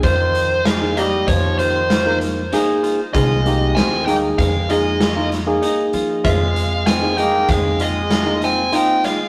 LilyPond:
<<
  \new Staff \with { instrumentName = "Lead electric guitar" } { \time 5/4 \key f \minor \tempo 4 = 97 c''4 f''8 ees''8 des''8 c''4 r4. | ees''4 aes''8 g''8 f''8 ees''4 r4. | f''4 aes''8 g''8 f''8 ees''4 aes''8 g''8 f''8 | }
  \new Staff \with { instrumentName = "Grand piano" } { \time 5/4 \key f \minor f'4 f'8 ees'4 f'8 f'4 ees'8 f'8 | f'4 f'8 ees'4 f'8 f'4 ees'8 f'8 | f'4 f'8 ees'4 f'8 f'4 ees'8 f'8 | }
  \new Staff \with { instrumentName = "Tine electric piano" } { \time 5/4 \key f \minor r4 r16 <bes ees' aes'>16 <bes ees' g'>4~ <bes ees' g'>16 r8 <bes ees' bes'>8 r16 <bes ees' aes'>8. r16 | <bes ees' aes'>8 <bes ees' g'>8. r16 <bes ees' aes'>8. r16 <bes ees' aes'>8 r16 <bes ees' f'>8 <bes ees' aes'>4~ <bes ees' aes'>16~ | <bes ees' aes'>16 r4 <bes ees' aes'>16 <bes ees' aes'>4~ <bes ees' aes'>16 r8 <bes ees' f'>8 r16 <bes ees' f'>8. r16 | }
  \new Staff \with { instrumentName = "Trombone" } { \clef bass \time 5/4 \key f \minor ees4 aes8 g8 f8 ees4 r4. | aes4 c'8 bes8 aes8 aes4 r4. | aes4 c'8 bes8 aes8 aes4 c'8 c'8 aes8 | }
  \new Staff \with { instrumentName = "Upright bass" } { \clef bass \time 5/4 \key f \minor f,2 f,2 r4 | c,4 ees,4 f,2 r8 f8 | f,2 f,2 r4 | }
  \new DrumStaff \with { instrumentName = "Drums" } \drummode { \time 5/4 <hh bd>8 hh8 <hh sn>8 <hh sn>8 <hh bd>8 hh8 <hh sn>8 hh8 <hh sn>8 hh8 | <hh bd>8 hh8 <hh sn>8 hh8 <hh bd>8 hh8 <hh sn>8 <hh sn>8 hh8 hh8 | <hh bd>8 hh8 <hh sn>8 hh8 <hh bd sn>8 hh8 <hh sn>8 hh8 hh8 <hh sn>8 | }
>>